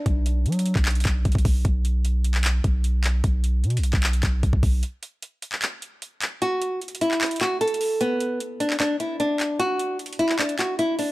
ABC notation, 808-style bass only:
X:1
M:4/4
L:1/16
Q:1/4=151
K:Bm
V:1 name="808-style bass" clef=bass
B,,,4 F,3 B,,,3 B,,,2 B,,, B,,, B,,,2 | B,,,8- B,,,2 B,,,6 | B,,,4 B,,3/2 B,,,3/2 B,,,3 B,,,2 B,,, B,,, B,,,2 | z16 |
z16 | z16 | z16 |]